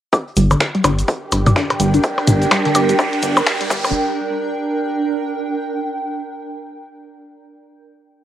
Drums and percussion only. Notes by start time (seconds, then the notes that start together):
0.12 kick, closed hi-hat, percussion blips, shaker
0.28 closed hi-hat
0.37 closed hi-hat, shaker
0.51 closed hi-hat, percussion blips, shaker
0.61 finger snap, kick, snare, closed hi-hat, shaker
0.75 closed hi-hat
0.84 closed hi-hat, percussion blips, shaker
0.99 closed hi-hat, shaker
1.08 kick, closed hi-hat, shaker
1.32 closed hi-hat, percussion blips, shaker
1.46 snare, closed hi-hat, mid tom, percussion blips, shaker
1.56 finger snap, kick, snare, closed hi-hat, shaker
1.70 closed hi-hat, percussion blips
1.80 closed hi-hat, shaker
1.94 closed hi-hat, shaker
2.03 kick, closed hi-hat, shaker
2.18 snare, percussion blips
2.27 closed hi-hat, mid tom, shaker
2.41 snare, closed hi-hat, shaker
2.51 finger snap, kick, snare, closed hi-hat, percussion blips, shaker
2.65 snare, closed hi-hat
2.75 closed hi-hat, percussion blips, shaker
2.89 closed hi-hat, shaker
2.99 kick, closed hi-hat, percussion blips, shaker
3.13 closed hi-hat
3.22 closed hi-hat, shaker
3.36 percussion blips, shaker
3.46 finger snap, kick, snare, closed hi-hat, shaker
3.61 closed hi-hat
3.70 kick, shaker
3.84 percussion blips, shaker